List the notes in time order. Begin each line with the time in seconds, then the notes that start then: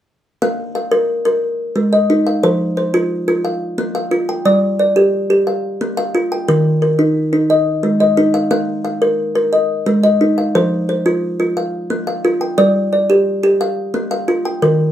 0.42 A#3 F5
0.75 F5
0.92 A#4
1.25 A#4
1.76 G#3
1.93 D#5
2.10 D#4
2.27 F5
2.43 F3 C5
2.77 C5
2.94 F4
3.28 F4
3.45 F5
3.78 A#3
3.95 F5
4.11 F4
4.29 G5
4.45 G3 D5
4.79 D5
4.96 G4
5.30 G4
5.47 F5
5.81 A#3
5.97 F5
6.15 F4
6.32 G5
6.48 D#3 A#4
6.82 A#4
6.99 D#4
7.33 D#4
7.50 D#5
7.83 G#3
8.00 D#5
8.17 D#4
8.34 F5
8.51 A#3 F5
8.85 F5
9.02 A#4
9.35 A#4
9.53 D#5
9.86 G#3
10.03 D#5
10.21 D#4
10.38 F5
10.55 F3 C5
10.89 C5
11.06 F4
11.40 F4
11.57 F5
11.90 A#3
12.07 F5
12.25 F4
12.41 G5
12.58 G3 D5
12.93 D5
13.10 G4
13.43 G4
13.61 F5
13.94 A#3
14.11 F5
14.28 F4
14.45 G5
14.62 D#3 A#4